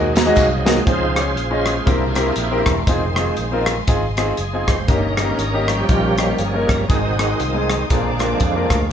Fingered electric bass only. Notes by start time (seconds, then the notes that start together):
Already playing: D#2
0.37 C2
0.87 C#2
1.36 A#1
1.87 C2
2.36 A#1
2.66 E1
2.87 F1
3.38 A#1
3.88 G#1
4.38 F#1
4.68 F#1
4.88 G1
5.39 G#1
5.89 A#1
6.39 G1
6.69 G1
6.90 G#1
7.39 C2
7.90 A#1
8.41 F2
8.70 D2